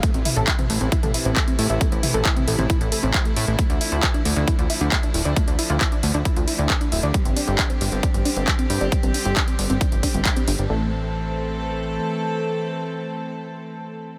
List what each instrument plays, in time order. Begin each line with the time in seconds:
0.03 string section C3 E3 A3 E4, synth arpeggio sound A3, kick, closed hi-hat
0.14 analog synth bass A1, synth arpeggio sound C4, closed hi-hat
0.25 synth arpeggio sound E4, open hi-hat, mid tom
0.36 analog synth bass A1, synth arpeggio sound A4, closed hi-hat
0.48 synth arpeggio sound E4, kick, clap, closed hi-hat
0.59 synth arpeggio sound C4, closed hi-hat, mid tom
0.70 analog synth bass A1, synth arpeggio sound A3, open hi-hat
0.81 analog synth bass A1, synth arpeggio sound C4, closed hi-hat
0.92 synth arpeggio sound E4, kick, closed hi-hat
1.03 analog synth bass A1, synth arpeggio sound A4, closed hi-hat, mid tom
1.14 synth arpeggio sound E4, open hi-hat
1.25 analog synth bass A1, synth arpeggio sound C4, closed hi-hat
1.36 synth arpeggio sound A3, kick, clap, closed hi-hat
1.48 synth arpeggio sound C4, closed hi-hat
1.59 analog synth bass A2, synth arpeggio sound E4, open hi-hat
1.70 analog synth bass A1, synth arpeggio sound E5, closed hi-hat
1.81 synth arpeggio sound A3, kick, closed hi-hat
1.92 analog synth bass A1, synth arpeggio sound C4, closed hi-hat
2.03 synth arpeggio sound E4, open hi-hat, mid tom
2.14 analog synth bass A1, synth arpeggio sound A4, closed hi-hat
2.25 synth arpeggio sound E4, kick, clap, closed hi-hat
2.36 synth arpeggio sound C4, closed hi-hat, mid tom
2.48 analog synth bass A1, synth arpeggio sound A3, open hi-hat
2.59 analog synth bass A1, synth arpeggio sound C4, closed hi-hat, mid tom
2.70 synth arpeggio sound E4, kick, closed hi-hat
2.81 analog synth bass A1, synth arpeggio sound A4, closed hi-hat
2.92 synth arpeggio sound A4, open hi-hat
3.03 analog synth bass A1, synth arpeggio sound C4, closed hi-hat
3.14 synth arpeggio sound C5, kick, clap, closed hi-hat
3.25 synth arpeggio sound A3, closed hi-hat
3.36 analog synth bass A2, synth arpeggio sound A4, open hi-hat
3.48 analog synth bass A1, synth arpeggio sound A3, closed hi-hat
3.59 string section D3 F3, synth arpeggio sound A3, kick, closed hi-hat
3.70 analog synth bass D2, synth arpeggio sound D4, closed hi-hat
3.81 synth arpeggio sound E4, open hi-hat
3.92 analog synth bass D2, synth arpeggio sound F4, closed hi-hat
4.03 synth arpeggio sound E4, kick, clap, closed hi-hat
4.14 synth arpeggio sound D4, closed hi-hat
4.25 analog synth bass D2, synth arpeggio sound A3, open hi-hat
4.36 analog synth bass D2, synth arpeggio sound D4, closed hi-hat
4.48 synth arpeggio sound E4, kick, closed hi-hat
4.59 analog synth bass D2, synth arpeggio sound F4, closed hi-hat
4.70 synth arpeggio sound E4, open hi-hat
4.81 analog synth bass D2, synth arpeggio sound D4, closed hi-hat
4.92 synth arpeggio sound A3, kick, clap, closed hi-hat
5.03 synth arpeggio sound D4, closed hi-hat
5.14 analog synth bass D1, synth arpeggio sound E4, open hi-hat
5.25 analog synth bass D2, synth arpeggio sound D5, closed hi-hat
5.36 synth arpeggio sound A3, kick, closed hi-hat
5.48 analog synth bass D2, synth arpeggio sound D4, closed hi-hat
5.59 synth arpeggio sound E4, open hi-hat
5.70 analog synth bass D2, synth arpeggio sound F4, closed hi-hat
5.81 synth arpeggio sound E4, kick, clap, closed hi-hat
5.92 synth arpeggio sound D4, closed hi-hat
6.03 analog synth bass D2, synth arpeggio sound A3, open hi-hat
6.14 analog synth bass D2, synth arpeggio sound D4, closed hi-hat
6.25 synth arpeggio sound E4, kick, closed hi-hat
6.36 analog synth bass D2, synth arpeggio sound F4, closed hi-hat
6.48 synth arpeggio sound E4, open hi-hat
6.59 analog synth bass D2, synth arpeggio sound D4, closed hi-hat
6.70 synth arpeggio sound A3, kick, clap, closed hi-hat
6.81 synth arpeggio sound D4, closed hi-hat
6.92 analog synth bass D1, synth arpeggio sound E4, open hi-hat
7.03 analog synth bass D2, synth arpeggio sound D5, closed hi-hat
7.14 synth arpeggio sound G3, string section G3 C4 G4, kick, closed hi-hat
7.25 analog synth bass G1, synth arpeggio sound C4, closed hi-hat
7.36 synth arpeggio sound D4, open hi-hat
7.48 analog synth bass G1, synth arpeggio sound G4, closed hi-hat
7.59 synth arpeggio sound D4, kick, clap, closed hi-hat
7.70 synth arpeggio sound C4, closed hi-hat
7.81 analog synth bass G1, synth arpeggio sound G3, open hi-hat
7.92 analog synth bass G1, synth arpeggio sound C4, closed hi-hat
8.03 synth arpeggio sound D4, kick, closed hi-hat
8.14 analog synth bass G1, synth arpeggio sound G4, closed hi-hat
8.25 synth arpeggio sound D4, open hi-hat
8.36 analog synth bass G1, synth arpeggio sound C4, closed hi-hat
8.48 synth arpeggio sound G3, kick, clap, closed hi-hat
8.59 synth arpeggio sound C4, closed hi-hat
8.70 analog synth bass G2, synth arpeggio sound D4, open hi-hat
8.81 analog synth bass G1, synth arpeggio sound D5, closed hi-hat
8.92 synth arpeggio sound G3, kick, closed hi-hat
9.03 analog synth bass G1, synth arpeggio sound C4, closed hi-hat
9.14 synth arpeggio sound D4, open hi-hat
9.25 analog synth bass G1, synth arpeggio sound G4, closed hi-hat
9.36 synth arpeggio sound D4, kick, clap, closed hi-hat
9.48 synth arpeggio sound C4, closed hi-hat
9.59 analog synth bass G1, synth arpeggio sound G3, open hi-hat
9.70 analog synth bass G1, synth arpeggio sound C4, closed hi-hat
9.81 synth arpeggio sound D4, kick, closed hi-hat
9.92 analog synth bass G1, synth arpeggio sound G4, closed hi-hat
10.03 synth arpeggio sound D4, kick, open hi-hat
10.14 analog synth bass G1, synth arpeggio sound C4, closed hi-hat
10.25 synth arpeggio sound G3, kick, clap, closed hi-hat
10.36 synth arpeggio sound C4, closed hi-hat
10.48 analog synth bass G1, synth arpeggio sound D4, open hi-hat
10.59 analog synth bass G1, synth arpeggio sound D5, closed hi-hat
10.70 analog synth bass A1, string section E3 A3 C4 A4, synth arpeggio sound A3